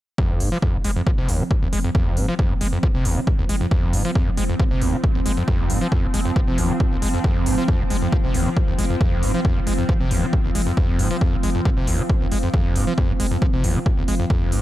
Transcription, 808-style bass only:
0.30 0.40 F1 medium
0.40 0.52 F1 loud
0.74 0.84 F1 medium
0.85 0.96 F1 loud
1.07 1.18 F1 medium
1.18 1.28 F1 medium
1.29 1.40 F1 loud
1.62 1.72 F1 medium
1.73 1.84 F1 loud
2.06 2.16 F1 medium
2.17 2.28 F1 loud
2.51 2.60 F1 medium
2.61 2.72 F1 loud
2.83 2.94 F1 medium
2.95 3.04 F1 medium
3.05 3.16 F1 loud
3.39 3.49 F1 medium
3.49 3.61 F1 loud
3.83 3.93 F1 medium
3.93 4.05 F1 loud
4.27 4.37 F1 medium
4.37 4.49 F1 loud
4.59 4.71 F1 medium
4.71 4.81 F1 medium
4.82 4.93 F1 loud
5.15 5.25 F1 medium
5.26 5.37 F1 loud
5.59 5.69 F1 medium
5.70 5.81 F1 loud
6.03 6.13 F1 medium
6.14 6.25 F1 loud
6.36 6.47 F1 medium
6.48 6.57 F1 medium
6.58 6.69 F1 loud
6.92 7.02 F1 medium
7.02 7.14 F1 medium
7.36 7.46 F1 medium
7.46 7.58 F1 loud
7.80 7.90 F1 medium
7.90 8.02 F1 loud
8.12 8.23 F1 medium
8.24 8.34 F1 medium
8.35 8.46 F1 loud
8.68 8.78 F1 medium
8.79 8.90 F1 medium
9.12 9.22 F1 medium
9.23 9.34 F1 loud
9.56 9.66 F1 medium
9.67 9.78 F1 loud
9.89 10.00 F1 medium
10.01 10.10 F1 medium
10.11 10.22 F1 loud
10.45 10.54 F1 medium
10.55 10.66 F1 medium
10.89 10.99 F1 medium
10.99 11.11 F1 loud
11.33 11.43 F1 medium
11.43 11.55 F1 loud
11.65 11.76 F1 medium
11.77 11.87 F1 medium
11.87 11.99 F1 loud
12.21 12.31 F1 medium
12.32 12.43 F1 loud
12.65 12.75 F1 medium
12.76 12.87 F1 loud
13.09 13.19 F1 medium
13.20 13.31 F1 loud
13.42 13.53 F1 medium
13.53 13.63 F1 medium
13.64 13.75 F1 loud
13.98 14.07 F1 medium
14.08 14.19 F1 loud
14.42 14.52 F1 medium
14.52 14.62 F1 loud

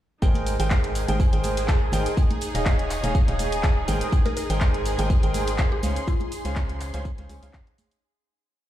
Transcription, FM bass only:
0.22 0.57 G#1 loud
0.60 1.06 G#1 loud
1.09 1.30 G#1 loud
1.33 1.91 G#1 loud
1.93 2.08 G#1 loud
2.55 3.01 D#1 medium
3.04 3.25 D#1 loud
3.28 3.86 D#1 loud
3.88 4.03 G#1 loud
4.50 4.96 G#1 loud
4.99 5.21 G#1 loud
5.23 5.81 G#1 loud
5.83 5.98 C#2 loud
6.45 6.91 C#2 loud
6.94 7.16 C#2 loud
7.18 7.27 C#2 loud
7.29 7.40 C#2 loud
7.43 7.50 C#2 loud

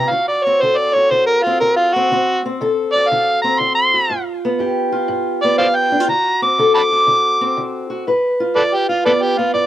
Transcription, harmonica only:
0.00 0.12 A#5 medium
0.11 0.27 F5 medium
0.28 0.46 D5 medium
0.44 0.63 C#5 medium
0.62 0.79 C5 medium
0.77 0.95 D5 medium
0.94 1.12 C#5 loud
1.11 1.26 C5 medium
1.26 1.44 A#4 loud
1.43 1.59 F4 medium
1.60 1.76 A#4 medium
1.76 1.95 F4 loud
1.93 2.42 F#4 medium
2.92 3.10 D5 loud
3.08 3.41 F5 loud
3.42 3.60 A#5 medium
3.59 3.74 C6 medium
3.75 4.23 C6 loud
5.42 5.58 D5 loud
5.58 5.67 C5 medium
5.58 5.67 D5 medium
5.58 5.77 F5 loud
5.75 6.07 G5 loud
6.09 6.40 A#5 loud
6.42 6.73 D6 medium
6.75 6.81 A5 medium
6.75 6.82 B5 medium
6.75 7.70 D6 loud
8.56 8.63 A4 medium
8.56 8.63 B4 medium
8.56 8.76 D5 loud
8.75 8.88 G4 medium
8.89 9.05 F4 medium
9.05 9.12 A4 medium
9.05 9.12 B4 medium
9.05 9.24 D5 medium
9.22 9.39 G4 medium
9.38 9.53 F4 medium
9.54 9.67 D5 medium

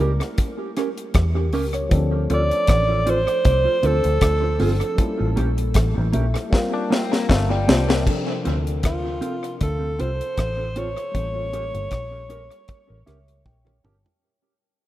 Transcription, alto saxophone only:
0.00 0.34 A#4 medium
2.34 3.11 D5 loud
3.10 3.88 C5 loud
3.86 4.61 A4 loud
4.61 5.34 A4 medium
8.86 9.57 F4 medium
9.62 10.02 A4 medium
10.00 10.80 C5 loud
10.78 13.46 C#5 loud

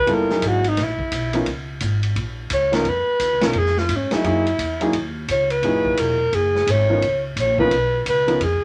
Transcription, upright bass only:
0.07 0.41 F#1 medium
0.42 0.76 G#1 medium
0.77 0.97 A#1 medium
0.98 muted upright bass stroke soft
1.12 1.45 B1 medium
1.46 1.80 C#2 medium
1.81 2.15 G#1 medium
2.16 2.49 A#1 medium
2.50 2.84 C#2 medium
2.85 3.06 F2 medium
3.08 muted upright bass stroke soft
3.20 3.33 D#2 medium
3.33 3.43 C#2 medium
3.43 3.54 B1 medium
3.54 3.88 F2 medium
3.89 4.10 G#2 medium
4.11 muted upright bass stroke soft
4.24 4.58 F#2 medium
4.59 4.92 E2 medium
4.93 5.27 D#2 medium
5.28 5.62 C#2 medium
5.63 5.97 F#1 medium
5.97 6.31 E1 medium
6.33 6.66 F#1 medium
6.67 7.01 G#1 loud
7.02 7.36 C#2 medium
7.36 7.70 A#1 medium
7.71 8.05 B1 medium
8.06 8.40 C#2 medium
8.40 8.54 F2 medium
8.53 8.64 C#2 medium

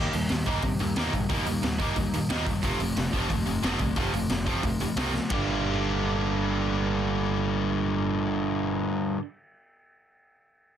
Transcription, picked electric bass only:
0.14 0.25 D#2 loud
0.31 0.41 D#2 medium
0.47 0.57 D#2 loud
0.63 0.73 C3 loud
0.81 0.91 D#2 medium
0.97 1.07 D#2 medium
1.13 1.24 A#1 medium
1.30 1.40 D#2 loud
1.46 1.57 D#2 medium
1.63 1.85 D#2 loud
1.96 2.18 D#2 medium
2.31 2.52 D#2 medium
2.63 2.74 F1 loud
2.80 2.90 F1 loud
2.96 3.07 F1 loud
3.13 3.24 F1 medium
3.30 3.41 D#2 loud
3.47 3.58 F1 medium
3.63 3.74 F1 medium
3.80 3.90 C2 medium
3.96 4.07 F1 loud
4.13 4.24 F1 medium
4.29 4.51 F1 medium
4.63 4.85 F1 medium
4.97 5.18 C2 medium
5.30 9.14 G1 loud

